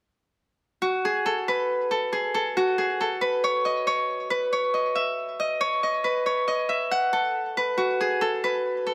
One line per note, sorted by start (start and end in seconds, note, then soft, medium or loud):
0.82 2.56 F#4 medium
1.05 1.32 G#4 medium
1.26 1.90 A4 medium
1.48 3.21 B4 medium
1.91 2.19 A4 medium
2.13 2.40 G#4 medium
2.34 2.84 A4 medium
2.57 5.00 F#4 medium
2.78 3.07 G#4 medium
3.01 5.20 A4 medium
3.21 4.30 B4 medium
3.44 3.87 C#5 medium
3.65 4.73 D#5 medium
3.87 4.52 C#5 medium
4.30 6.04 B4 medium
4.53 5.60 C#5 medium
4.74 5.01 D#5 medium
4.95 5.46 E5 medium
5.40 5.83 D#5 medium
5.61 6.26 C#5 medium
5.83 6.47 D#5 medium
6.04 7.57 B4 medium
6.26 8.17 C#5 medium
6.48 6.75 D#5 medium
6.69 8.41 E5 medium
6.91 8.52 F#5 medium
7.13 8.07 A4 medium
7.57 8.43 B4 medium
7.78 8.94 F#4 medium
8.01 8.27 G#4 medium
8.21 8.86 A4 medium
8.44 8.94 B4 medium
8.87 8.94 A4 medium